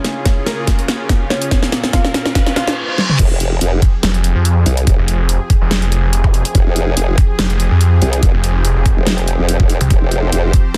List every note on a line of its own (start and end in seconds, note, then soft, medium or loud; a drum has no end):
0.00 1.50 C#3 medium
0.00 0.39 C#4 medium
0.00 2.74 C#4 medium
0.00 2.74 F4 medium
0.00 1.50 G#4 medium
0.00 0.39 C#5 medium
0.00 riser medium
0.04 snare medium
0.04 closed hi-hat medium
0.26 kick medium
0.26 snare medium
0.26 closed hi-hat medium
0.46 1.23 A#3 medium
0.46 1.23 A#4 medium
0.46 snare medium
0.46 closed hi-hat medium
0.67 kick medium
0.67 snare medium
0.67 closed hi-hat medium
0.79 closed hi-hat soft
0.88 snare medium
0.88 closed hi-hat medium
1.09 kick medium
1.09 snare medium
1.09 closed hi-hat medium
1.30 1.85 C#4 medium
1.30 1.86 C#5 medium
1.30 snare medium
1.42 closed hi-hat medium
1.51 2.76 A#2 medium
1.51 2.76 A#3 medium
1.51 kick loud
1.51 snare medium
1.51 closed hi-hat medium
1.63 snare medium
1.72 snare medium
1.72 closed hi-hat soft
1.84 snare medium
1.93 2.48 F4 medium
1.93 2.48 F5 medium
1.93 kick medium
1.93 snare medium
1.93 closed hi-hat medium
2.05 snare medium
2.14 snare loud
2.14 closed hi-hat medium
2.26 snare medium
2.35 kick loud
2.35 snare loud
2.35 closed hi-hat medium
2.35 reverse cymbal medium
2.46 snare medium
2.46 closed hi-hat soft
2.56 2.77 F4 medium
2.56 2.77 F5 loud
2.56 snare loud
2.56 closed hi-hat medium
2.67 snare medium
2.98 snare medium
3.09 mid tom medium
3.19 3.29 F1 loud
3.19 10.77 F3 medium
3.19 10.77 C4 medium
3.19 10.77 G4 medium
3.19 9.89 G#4 medium
3.19 kick loud
3.19 closed hi-hat medium
3.19 crash loud
3.30 3.60 F1 loud
3.40 closed hi-hat medium
3.61 3.81 F1 medium
3.61 closed hi-hat medium
3.82 kick loud
3.82 closed hi-hat medium
4.03 4.34 F1 loud
4.03 snare loud
4.03 closed hi-hat medium
4.14 closed hi-hat soft
4.24 closed hi-hat medium
4.35 4.65 F2 loud
4.45 closed hi-hat medium
4.66 4.85 C2 medium
4.66 open hi-hat loud
4.77 closed hi-hat medium
4.87 4.96 F1 medium
4.87 kick loud
4.87 closed hi-hat medium
4.98 5.38 F1 loud
5.08 closed hi-hat medium
5.29 closed hi-hat medium
5.50 kick loud
5.50 closed hi-hat medium
5.61 6.43 F1 loud
5.71 snare loud
5.71 closed hi-hat medium
5.82 closed hi-hat soft
5.92 closed hi-hat medium
6.13 closed hi-hat medium
6.24 kick loud
6.24 zap medium
6.34 open hi-hat loud
6.45 closed hi-hat medium
6.55 6.64 F1 medium
6.55 kick loud
6.55 closed hi-hat medium
6.66 6.95 F1 loud
6.76 closed hi-hat medium
6.97 7.16 F1 medium
6.97 closed hi-hat medium
7.18 kick loud
7.18 closed hi-hat medium
7.39 7.69 F1 loud
7.39 snare loud
7.39 closed hi-hat medium
7.50 closed hi-hat soft
7.60 closed hi-hat medium
7.71 8.00 F2 loud
7.81 closed hi-hat medium
8.02 8.21 C2 loud
8.02 open hi-hat medium
8.13 closed hi-hat medium
8.23 8.32 F1 loud
8.23 kick loud
8.23 closed hi-hat medium
8.34 8.74 F1 loud
8.44 closed hi-hat medium
8.65 closed hi-hat medium
8.76 8.95 F1 loud
8.86 kick loud
8.86 closed hi-hat medium
8.97 9.37 F1 loud
9.07 snare loud
9.07 closed hi-hat medium
9.18 closed hi-hat soft
9.28 closed hi-hat medium
9.39 9.58 F1 medium
9.49 closed hi-hat medium
9.60 9.79 F1 medium
9.60 kick loud
9.70 open hi-hat medium
9.81 9.89 C2 loud
9.81 closed hi-hat medium
9.90 10.00 F1 loud
9.90 10.77 C5 medium
9.90 kick loud
9.90 closed hi-hat medium
10.02 10.31 F1 loud
10.11 closed hi-hat soft
10.32 10.52 F1 medium
10.32 closed hi-hat medium
10.53 kick loud
10.53 closed hi-hat medium